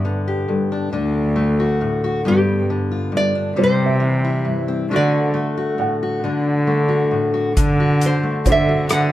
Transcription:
Already playing: G2 B3 D5
0.05 D3
0.28 G4
0.48 G2 A4
0.72 D4
0.93 D2 D3 D4
1.36 A3
1.60 F#4
1.81 A2
2.04 F#4
2.25 G2 B3 G4
2.70 D3
2.92 F4
3.12 G2
3.17 D5
3.35 D4
3.56 C3 G3 C5
3.64 C5
3.86 E5
4.00 E3
4.25 E4
4.45 G2
4.68 C4
4.90 D3 A3 D4 F#4
4.96 D5
5.34 A3
5.57 F#4
5.78 A2 F#5
6.03 F#4
6.24 D3 D4
6.67 A3
6.89 F#4
7.11 A2
7.34 F#4
7.56 D3, kick, closed hi-hat
7.80 F#4
8.01 closed hi-hat
8.06 C5
8.23 A3
8.46 D3 C5, kick, closed hi-hat
8.52 E5
8.69 F#4
8.89 D3 F#5, cross-stick, closed hi-hat

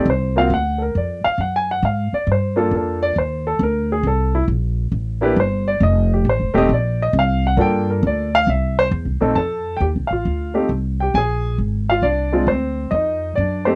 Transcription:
0.05 C2
0.10 C5
0.36 A#3 C4 F4 F#4 F5
0.50 D2 F#5
0.78 A4 A#4
0.95 F2 D5
1.24 F5, muted upright bass stroke
1.38 F#2 F#5
1.56 G#5
1.71 F#5
1.82 G#2 F5
2.13 D5, muted upright bass stroke
2.27 G2
2.32 C5
2.56 A#3 D4 F4 A4
2.71 F2
2.76 A4
3.03 D5
3.16 D#2 C5
3.47 A4
3.59 D2 A#4
3.92 G#4
4.03 C2 A4
4.35 E4
4.48 A#1
4.92 A1
5.21 A#3 D4 E4 G4 B4
5.36 G1 C5
5.68 D5
5.80 F1 D#5
6.14 G4
6.25 A1
6.29 C5
6.40 F1
6.54 D#1 A3 C4 D#4 G4 D#5
6.69 A#1
6.73 D5
7.02 D#5
7.13 C2
7.19 F5
7.47 F#5
7.57 G2 A#3 D4 F4 A4
7.61 G5
7.90 A#4
8.03 D2
8.07 D5
8.35 F5
8.47 C2 E5
8.79 C5
8.91 E2
9.05 C2
9.21 A#1 F2 A3 C4 D#4 A4
9.35 F2 A4 A5
9.77 D#2 G5
9.81 G4
9.96 C2
10.07 A1 F5
10.13 F4
10.25 D2
10.54 A3 C4 D#4 G4
10.69 C2
11.00 G4 G5
11.14 A#1 G#4 G#5
11.58 G#1
11.90 F4 F5
12.02 C2 D4 D5
12.32 G#3 C4 D4 F4
12.47 D2 C5
12.51 C4
12.91 F2 D#4 D#5
13.35 F#2 D5
13.40 D4
13.65 A3 C4 D#4 G4 C5

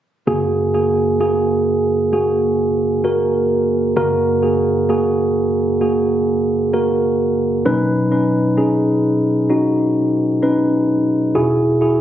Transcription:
0.27 F#2 C#3 A#3 F#4 G#4
0.74 A#3 F#4 G#4
1.20 A#3 F#4 G#4
2.12 A#3 F#4 G#4
3.04 A#3 F#4 A#4
3.96 F#2 C#3 A#3 F#4 A#4
4.42 A#3 F#4 G#4
4.89 A#3 F#4 G#4
5.81 A#3 F#4 G#4
6.73 A#3 F#4 A#4
7.66 B2 F#3 C#4 D#4 B4
8.12 C#4 D#4 B4
8.57 C#4 D#4 G#4
9.50 C#4 D#4 F#4
10.42 C#4 D#4 B4
11.35 E2 B2 E4 F#4 G#4
11.81 E4 F#4 G#4

